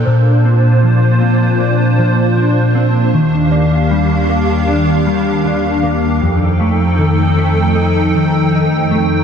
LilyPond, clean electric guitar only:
\new Staff \with { instrumentName = "Clean electric guitar" } { \time 4/4 \key bes \major \tempo 4 = 78 bes,8 c'8 f8 c'8 d'8 f8 d'8 c'8 | ees8 bes8 g8 bes8 d'8 g8 d'8 bes8 | f,8 a8 ees8 a8 ees'8 ees8 ees'8 a8 | }